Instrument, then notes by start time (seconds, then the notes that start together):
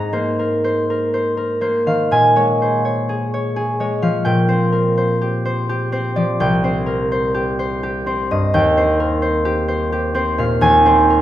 harp
Already playing: G#2 C4 G#4 C5 A#5 C6
0.13 A#3 C5
0.39 A#4
0.64 C5
0.90 A#4
1.14 C5
1.37 A#4
1.61 A#3 C5
1.86 D#3 F5
2.11 A#2 G#5
2.36 G#3 C#5
2.62 C5
2.85 C#5
3.09 G#4
3.34 C#5
3.56 G#4
3.80 G#3 C#5
4.02 F3 F5
4.25 A#2 G5
4.48 C4 C5
4.72 A#4
4.97 C5
5.21 G4
5.45 C5
5.69 G4
5.92 C4 C5
6.16 F3 D5
6.40 C2 G5
6.64 C4 C5
6.86 A#4
7.12 C5
7.34 G4
7.59 C5
7.83 G4
8.06 C4 C5
8.31 G2 D#5
8.54 D#2 G5
8.77 C4 C5
9.00 A#4
9.22 C5
9.45 G4
9.68 C5
9.92 G4
10.14 C4 C5
10.38 A#2 F5
10.61 D#2 G#5
10.85 C4 C5
11.10 A#4